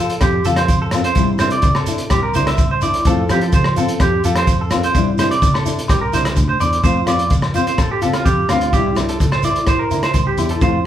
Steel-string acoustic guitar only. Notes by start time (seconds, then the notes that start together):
0.00 F4
0.46 F4, muted steel-string acoustic guitar stroke
0.94 C4 F4
1.16 G3 D4 E4
1.41 D4 E4
1.88 D4 E4
2.35 D4 E4
2.83 D4 E4
3.06 A3 C4 F4
3.31 C4 F4
3.76 C4 F4
4.25 F4
4.72 C4 F4
4.96 G3 D4 E4
5.19 D4 E4
5.65 D4 E4
6.13 D4 E4
6.63 D4
6.84 A3 C4 F4
7.06 C4 F4
7.54 C4 F4
8.02 C4 F4
8.50 C4 F4
8.74 G3 D4 E4
8.98 D4 E4
9.44 E4, muted steel-string acoustic guitar stroke
9.91 D4 E4
10.39 D4 E4
10.61 A3 F4, muted steel-string acoustic guitar stroke